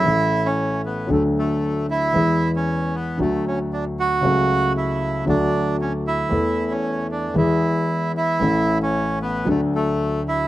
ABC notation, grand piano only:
X:1
M:4/4
L:1/8
Q:1/4=114
K:A
V:1 name="Grand piano" clef=bass
[A,,,A,,E,A,CA]4 [D,,D,F,A,DA]4 | [E,,E,G,B,G]4 [D,,D,F,A,F]4 | [C,,C,F,A,F]4 [D,,D,F,A,F]4 | [E,,E,A,B,A]4 [E,,E,G,B,G]4 |
[A,,,A,,E,A,CA]4 [D,,D,F,A,DA]4 |]